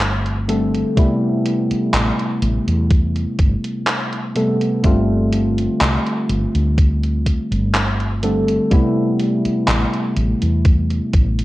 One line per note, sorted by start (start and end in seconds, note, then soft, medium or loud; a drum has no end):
0.00 0.83 G1 medium
0.00 0.42 D3 medium
0.00 0.43 G3 medium
0.00 0.43 A3 medium
0.00 0.44 C4 medium
0.00 0.44 F4 medium
0.00 clap loud
0.00 closed hi-hat medium
0.26 closed hi-hat soft
0.48 0.91 D3 medium
0.48 0.92 G3 medium
0.48 0.92 A3 medium
0.48 0.92 C4 medium
0.48 0.92 A4 medium
0.48 closed hi-hat medium
0.74 closed hi-hat medium
0.96 4.30 C3 medium
0.96 4.30 G3 medium
0.96 4.30 A3 medium
0.96 4.31 B3 medium
0.96 4.31 E4 medium
0.96 kick loud
0.96 closed hi-hat medium
1.46 closed hi-hat medium
1.71 muted fretless electric bass stroke soft
1.71 closed hi-hat medium
1.94 2.09 A1 loud
1.94 clap loud
1.94 closed hi-hat medium
2.19 closed hi-hat soft
2.42 2.58 A1 loud
2.42 closed hi-hat medium
2.67 3.24 E2 medium
2.67 closed hi-hat medium
2.90 kick loud
2.90 closed hi-hat medium
3.16 closed hi-hat soft
3.39 3.55 G1 medium
3.39 kick loud
3.39 closed hi-hat medium
3.64 closed hi-hat medium
3.87 clap loud
3.87 closed hi-hat medium
4.13 closed hi-hat soft
4.35 4.79 C3 medium
4.35 4.79 G3 medium
4.35 4.79 A3 medium
4.35 4.79 B3 medium
4.35 4.79 A4 medium
4.35 closed hi-hat medium
4.61 closed hi-hat medium
4.83 5.67 G1 loud
4.83 8.17 D3 medium
4.83 8.17 G3 medium
4.83 8.18 A3 medium
4.83 8.18 C4 medium
4.83 8.18 F4 medium
4.83 kick loud
4.83 closed hi-hat medium
5.32 closed hi-hat medium
5.58 closed hi-hat medium
5.81 5.96 C2 loud
5.81 clap loud
5.81 closed hi-hat medium
6.07 closed hi-hat soft
6.29 6.45 G1 loud
6.29 closed hi-hat medium
6.55 7.36 D2 medium
6.55 closed hi-hat medium
6.78 kick loud
6.78 closed hi-hat medium
7.03 closed hi-hat soft
7.26 kick medium
7.26 closed hi-hat medium
7.51 8.57 G1 medium
7.51 closed hi-hat medium
7.75 clap loud
7.75 closed hi-hat medium
8.00 closed hi-hat soft
8.23 8.66 D3 medium
8.23 8.66 G3 medium
8.23 8.66 A3 medium
8.23 8.66 C4 medium
8.23 8.66 A4 medium
8.23 closed hi-hat medium
8.48 closed hi-hat medium
8.70 11.44 C3 medium
8.70 11.44 G3 medium
8.70 11.44 A3 medium
8.70 11.44 B3 medium
8.70 11.44 E4 medium
8.70 kick loud
8.70 closed hi-hat medium
9.19 closed hi-hat medium
9.45 muted fretless electric bass stroke soft
9.45 closed hi-hat medium
9.68 9.83 A1 loud
9.68 clap loud
9.68 closed hi-hat medium
9.93 closed hi-hat soft
10.16 10.32 A1 loud
10.16 closed hi-hat medium
10.42 10.99 E2 medium
10.42 closed hi-hat medium
10.65 kick loud
10.65 closed hi-hat medium
10.90 closed hi-hat soft
11.13 11.44 A1 medium
11.13 kick loud
11.13 closed hi-hat medium
11.39 closed hi-hat medium